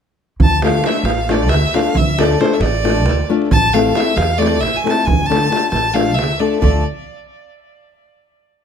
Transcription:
0.40 upright bass D2, violin A5, davul low
0.62 nylon-string guitar A3 D4 F4 A4, violin F5, davul high
0.73 davul high
0.84 nylon-string guitar A3 D4 F4 A4, violin E5, davul high
0.96 davul high
1.03 upright bass A1, violin F5, davul high
1.29 nylon-string guitar A3 D4 F4 A4, violin D5, davul high
1.39 davul high
1.49 upright bass D2, violin E5, davul high
1.74 nylon-string guitar A3 D4 F4 A4, violin F5, davul high
1.85 davul high
1.95 upright bass D2, violin E5, davul low
2.18 nylon-string guitar A3 D4 F4 A4, violin D5, davul high
2.30 davul high
2.40 nylon-string guitar A3 D4 F4 A4, violin C5, davul high
2.50 violin E5, davul high
2.60 upright bass A1, violin D5, davul high
2.84 nylon-string guitar A3 D4 F4 A4, davul high
2.96 davul high
3.06 upright bass D2, davul high
3.29 nylon-string guitar A3 D4 F4 A4
3.42 davul high
3.51 upright bass A1, violin A5, davul low
3.73 nylon-string guitar A3 C4 E4 A4, violin F5, davul high
3.86 davul high
3.95 nylon-string guitar A3 C4 E4 A4, violin E5, davul high
4.08 davul high
4.16 upright bass E2, violin F5, davul high
4.38 nylon-string guitar A3 C4 E4 A4, violin D5
4.42 davul high
4.52 davul high
4.60 upright bass A1, violin E5, davul high
4.76 violin G#5
4.84 nylon-string guitar A3 C4 E4 A4, davul high
4.90 violin A5
4.98 davul high
5.05 upright bass D2, violin G#5, davul low
5.21 davul high
5.26 nylon-string guitar A3 D4, violin A5
5.31 nylon-string guitar F4 A4, davul high
5.50 nylon-string guitar A3 D4 F4 A4, davul high
5.70 upright bass A1, violin A5, davul high
5.86 davul high
5.94 nylon-string guitar A3 D4 F4 A4, violin F5, davul high
6.08 davul high
6.14 upright bass D2, violin E5
6.19 davul high
6.30 davul high
6.39 nylon-string guitar A3 D4 F4 A4, violin D5
6.60 upright bass D2, nylon-string guitar A3 D4 F4 A4, violin D5, davul low

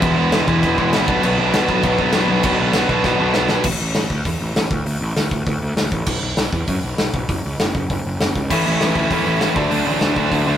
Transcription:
Already playing: overdriven electric guitar B3
0.02 picked electric bass E1, overdriven electric guitar E2 B2, distorted electric guitar E3 G#3 B3 E4, kick, crash
0.17 picked electric bass E1, overdriven electric guitar E2 B2, distorted electric guitar E3 G#3 B3 E4
0.32 picked electric bass E1, overdriven electric guitar E2 B2, distorted electric guitar E3 G#3 B3 E4, snare, crash
0.47 overdriven electric guitar E2 B2, picked electric bass E2, distorted electric guitar E3 G#3 B3 E4, kick
0.63 picked electric bass E1, overdriven electric guitar E2 B2, distorted electric guitar E3 G#3 B3 E4, kick, crash
0.78 picked electric bass E1, overdriven electric guitar E2 B2, distorted electric guitar E3 G#3 B3 E4, kick
0.93 picked electric bass A#1, overdriven electric guitar E2 B2, distorted electric guitar E3 G#3 B3 E4, snare, crash
1.07 picked electric bass B1, distorted electric guitar B2 F#3 B3 D4, kick
1.22 picked electric bass B1, distorted electric guitar B2 F#3 B3 D4, crash
1.38 picked electric bass B1, distorted electric guitar B2 F#3 B3 D4
1.53 picked electric bass B1, distorted electric guitar B2 F#3 B3 D4, snare, crash
1.69 picked electric bass B1, distorted electric guitar B2 F#3 B3 D4, kick
1.83 picked electric bass B1, distorted electric guitar B2 F#3 B3 D4, kick, crash
1.99 picked electric bass B1, distorted electric guitar B2 F#3 B3 D4, kick
2.12 picked electric bass B1, distorted electric guitar B2 F#3 B3 D4, snare, crash
2.28 picked electric bass B1, distorted electric guitar B2 F#3 B3 D4
2.43 picked electric bass B1, distorted electric guitar B2 F#3 B3 D4, kick, crash
2.59 picked electric bass B1, distorted electric guitar B2 F#3 B3 D4
2.73 picked electric bass B1, distorted electric guitar B2 F#3 B3 D4, snare, crash
2.89 picked electric bass B2, distorted electric guitar B2 F#3 B3 D4, kick
3.04 picked electric bass B1, distorted electric guitar B2 F#3 B3 D4, kick, snare
3.20 picked electric bass B1, distorted electric guitar B2 F#3 B3 D4
3.34 picked electric bass B1, distorted electric guitar B2 F#3 B3 D4, snare
3.48 picked electric bass B1, distorted electric guitar B2 F#3 B3 D4, snare
3.64 picked electric bass A1, kick, crash
3.80 picked electric bass A1
3.95 picked electric bass A1, snare, open hi-hat
4.10 picked electric bass D2, kick
4.25 picked electric bass E2, kick, open hi-hat
4.41 picked electric bass A1
4.55 picked electric bass A1, snare, open hi-hat
4.71 picked electric bass D2, kick
4.86 picked electric bass D2, open hi-hat
5.01 picked electric bass A1
5.16 picked electric bass D2, snare, open hi-hat
5.31 picked electric bass D2, kick
5.47 picked electric bass D2, kick, open hi-hat
5.62 picked electric bass D2
5.77 picked electric bass D2, snare, open hi-hat
5.92 picked electric bass A1, kick
6.06 picked electric bass B1, kick, crash
6.22 picked electric bass B1
6.37 picked electric bass B1, snare, open hi-hat
6.53 picked electric bass E2, kick
6.67 picked electric bass F#2, kick, open hi-hat
6.84 picked electric bass B1
6.98 picked electric bass B1, snare, open hi-hat
7.13 picked electric bass B1, kick
7.29 picked electric bass F#1, kick, open hi-hat
7.46 picked electric bass C#2
7.60 picked electric bass F#1, snare, open hi-hat
7.75 picked electric bass F#1, kick
7.90 picked electric bass F#1, kick, open hi-hat
8.06 picked electric bass F#1
8.20 picked electric bass F#1, snare, open hi-hat
8.36 picked electric bass C#2, kick
8.50 picked electric bass A1, distorted electric guitar A2 E3 A3 C#4 E4, kick, crash
8.66 picked electric bass A1, distorted electric guitar A2 E3 A3 C#4 E4
8.80 picked electric bass A1, distorted electric guitar A2 E3 A3 C#4 E4, snare, open hi-hat
8.95 picked electric bass D2, distorted electric guitar A2 E3 A3 C#4 E4, kick
9.10 picked electric bass E2, distorted electric guitar A2 E3 A3 C#4 E4, kick, open hi-hat
9.26 picked electric bass A1, distorted electric guitar A2 E3 A3 C#4 E4
9.41 picked electric bass A1, distorted electric guitar A2 E3 A3 C#4 E4, snare, open hi-hat
9.56 picked electric bass D2, distorted electric guitar D3 F#3 A3 D4, kick
9.70 picked electric bass D2, distorted electric guitar D3 F#3 A3 D4, open hi-hat
9.85 picked electric bass A1, distorted electric guitar D3 F#3 A3 D4
10.01 picked electric bass D2, distorted electric guitar D3 F#3 A3 D4, snare, open hi-hat
10.16 picked electric bass D2, distorted electric guitar D3 F#3 A3 D4, kick
10.31 picked electric bass D2, distorted electric guitar D3 F#3 A3 D4, kick, open hi-hat
10.47 picked electric bass D2, distorted electric guitar D3 F#3 A3 D4

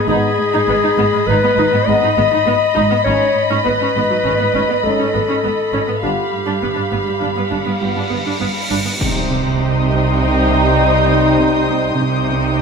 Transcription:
Already playing: violin section D#6 G#6
0.08 double bass section G#1, cello section G#2, french horn section B3 D#4, viola section D#4, clarinet G#4, violin section D#5 B5
0.39 cello section G#2
0.53 cello section G#2, viola section D#4
0.68 double bass section G#1, cello section G#2, viola section B3
0.83 cello section G#2, viola section D#4
0.98 double bass section G#1, cello section G#2, viola section B3
1.13 cello section G#2, viola section G#3
1.27 double bass section G#1, cello section G#2, viola section D#4, clarinet B4
1.44 cello section G#2, viola section B3
1.48 violin section A6
1.57 double bass section G#1, cello section G#2, viola section D#4
1.73 cello section G#2, viola section B3
1.87 double bass section G#1, cello section G#2 G#3, viola section G#3, french horn section B3 D#4, clarinet D#5
2.02 cello section G#2, viola section D#4
2.17 double bass section G#1, cello section G#2 G#3, viola section B3
2.32 cello section G#2, viola section D#4
2.46 double bass section G#1, cello section G#2, viola section B3
2.75 double bass section G#1, cello section G#2, viola section D#4
2.90 cello section G#2, viola section B3
3.04 double bass section G#1, cello section G#2, viola section C#4, french horn section C#4, clarinet C#5
3.08 french horn section D#4
3.37 cello section G#2
3.50 cello section G#2, viola section C#4
3.64 double bass section G#1, cello section G#2, viola section B3, clarinet B4
3.81 cello section G#2, viola section C#4
3.96 double bass section G#1, cello section G#2, viola section B3
4.11 cello section G#2, viola section F#3
4.25 double bass section G#1, cello section G#2, viola section C#4
4.38 cello section G#2, viola section B3
4.54 double bass section G#1, cello section G#2, viola section C#4
4.69 cello section G#2, viola section B3
4.84 double bass section G#1, cello section G#2 G#3, viola section F#3, french horn section C#4 D#4, clarinet A4
4.99 cello section G#2, viola section C#4
5.14 double bass section G#1, cello section G#2 G#3, viola section B3
5.29 cello section G#2, viola section C#4
5.44 double bass section G#1, cello section G#2, viola section B3
5.73 double bass section G#1, cello section G#2, viola section C#4
5.88 cello section G#2, viola section B3
6.02 double bass section G1, cello section G2, french horn section B3 F4, viola section D4, clarinet G4, violin section F5 B5, cymbal swell
6.33 cello section G2
6.46 cello section G2, viola section D4
6.61 double bass section G1, cello section G2, viola section B3
6.76 cello section G2, viola section D4
6.91 double bass section G1, cello section G2, viola section B3
7.06 cello section G2, viola section G3
7.21 double bass section G1, cello section G2, viola section D4
7.37 cello section G2, viola section B3
7.50 double bass section G1, cello section G2, viola section D4
7.66 cello section G2, viola section B3
7.81 double bass section G1, cello section G2 G3, viola section G3, french horn section B3 F4
7.96 cello section G2, viola section D4
8.10 double bass section G1, cello section G2 G3, viola section B3
8.26 cello section G2, viola section D4
8.40 double bass section G1, cello section G2, viola section B3
8.70 double bass section G1, cello section G2, viola section D4
8.85 cello section G2, viola section B3
8.99 double bass section C2, cello section C3, french horn section G3 D#4, viola section D#4, violin section C5 G5 C6, impact
9.31 cello section C3
9.60 cello section C4, violin section D#6
9.91 cello section C3
10.20 cello section C3, violin section G6
10.50 cello section C3
10.79 cello section C3
11.09 cello section C4
11.38 cello section C3
11.69 cello section C4
11.98 double bass section C2, cello section C3, french horn section G3 D#4, viola section D#4, violin section C5 G5
12.28 cello section C3
12.58 cello section C4

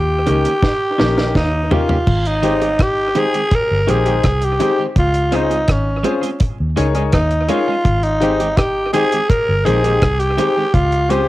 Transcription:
Already playing: fingered electric bass D#2, tenor saxophone G4
0.26 fingered electric bass C#2, clean electric guitar D#3 A#3 C#4 G4, grand piano C#4 D#4 G4 A#4, closed hi-hat, high bongo, low bongo
0.45 clean electric guitar D#3 A#3 C#4 G4, closed hi-hat
0.63 kick, snare
0.98 fingered electric bass A#1, clean electric guitar D#3 A#3 C#4 G4, grand piano C#4 D#4 G4 A#4, snare
1.16 clean electric guitar D#3 A#3 C#4 G4, grand piano C#4 D#4 G4 A#4, snare, high bongo
1.35 fingered electric bass D#2, tenor saxophone D#4, kick, snare
1.70 clean electric guitar D#3 A#3 C#4 G4, grand piano C#4 D#4 G4 A#4, tenor saxophone F4, floor tom, high bongo, low bongo
1.89 clean electric guitar D#3 A#3 C#4 G4, grand piano G4 A#4, floor tom
2.07 fingered electric bass G#1, kick, crash
2.25 tenor saxophone D#4, closed hi-hat
2.42 clean electric guitar D#3 G#3 C4 G4, grand piano D#4 G4 G#4 C5, closed hi-hat, high bongo
2.61 clean electric guitar D#3 G#3 C4 G4, closed hi-hat, high bongo
2.79 tenor saxophone G4, kick, cross-stick, closed hi-hat
3.15 clean electric guitar D#3 G#3 C4 G4, grand piano D#4 G4 G#4 C5, tenor saxophone G#4, closed hi-hat, high bongo, low bongo
3.33 clean electric guitar D#3 G#3 C4 G4, closed hi-hat
3.51 tenor saxophone A#4, kick, closed hi-hat
3.71 fingered electric bass G1
3.87 fingered electric bass A#1, clean electric guitar D#3 G#3 C4 G4, grand piano D#4 G4 G#4 C5, tenor saxophone G#4, closed hi-hat
4.05 clean electric guitar D#3 G#3 C4 G4, grand piano D#4 G4 G#4 C5, closed hi-hat
4.24 fingered electric bass C2, kick, cross-stick, closed hi-hat
4.42 tenor saxophone G4, closed hi-hat
4.59 clean electric guitar D#3 G#3 C4 G4, grand piano D#4 G4 G#4 C5, closed hi-hat, high bongo, low bongo
4.77 clean electric guitar D#3 G#3 C4 G4, grand piano G#4 C5
4.96 fingered electric bass C#2, tenor saxophone F4, kick, closed hi-hat
5.14 closed hi-hat
5.31 clean electric guitar G#3 C4 F4 G#4, grand piano C#4 F4 G#4 C5, tenor saxophone D#4, closed hi-hat, high bongo
5.49 clean electric guitar G#3 C4 F4 G#4, closed hi-hat, high bongo
5.68 fingered electric bass G#1, tenor saxophone C#4, kick, cross-stick, closed hi-hat
6.03 clean electric guitar G#3 C4 F4 G#4, grand piano C#4 F4 G#4 C5, closed hi-hat, high bongo, low bongo
6.22 clean electric guitar G#3 C4 F4 G#4, closed hi-hat
6.40 kick, closed hi-hat
6.60 fingered electric bass D#2
6.76 fingered electric bass C#2, clean electric guitar G#3 C#4 D#4 G#4, grand piano D#4 G#4 A#4 C#5, closed hi-hat
6.94 clean electric guitar G#3 C#4 D#4 G#4, grand piano D#4 G#4 A#4 C#5, closed hi-hat
7.12 fingered electric bass D#2, tenor saxophone D#4, kick, cross-stick, closed hi-hat
7.31 closed hi-hat
7.48 clean electric guitar G#3 C#4 D#4 G#4, grand piano D#4 G#4 A#4 C#5, tenor saxophone F4, closed hi-hat, high bongo, low bongo
7.67 clean electric guitar G#3 C#4 D#4 G#4
7.85 fingered electric bass G#1, kick, closed hi-hat
8.03 tenor saxophone D#4, closed hi-hat
8.20 clean electric guitar D#3 G#3 C4 G4, grand piano D#4 G4 G#4 C5, closed hi-hat, high bongo
8.40 clean electric guitar D#3 G#3 C4 G4, closed hi-hat, high bongo
8.57 tenor saxophone G4, kick, cross-stick, closed hi-hat
8.93 clean electric guitar D#3 G#3 C4 G4, grand piano D#4 G4 G#4 C5, tenor saxophone G#4, closed hi-hat, high bongo, low bongo
9.12 clean electric guitar D#3 G#3 C4 G4, closed hi-hat
9.29 tenor saxophone A#4, kick, closed hi-hat
9.49 fingered electric bass G1
9.65 fingered electric bass A#1, clean electric guitar D#3 G#3 C4 G4, grand piano D#4 G4 G#4 C5, tenor saxophone G#4, closed hi-hat
9.83 clean electric guitar D#3 G#3 C4 G4, grand piano D#4 G4 G#4 C5, closed hi-hat
10.02 fingered electric bass C2, kick, cross-stick, closed hi-hat
10.20 tenor saxophone G4, closed hi-hat
10.37 clean electric guitar D#3 G#3 C4 G4, grand piano D#4 G4 G#4 C5, closed hi-hat, high bongo, low bongo
10.56 clean electric guitar D#3 G#3 C4 G4, grand piano G#4 C5
10.74 fingered electric bass C#2, tenor saxophone F4, kick, closed hi-hat
10.92 closed hi-hat
11.09 clean electric guitar G#3 C4 F4 G#4, grand piano C#4 F4 G#4 C5, tenor saxophone G4, closed hi-hat, high bongo

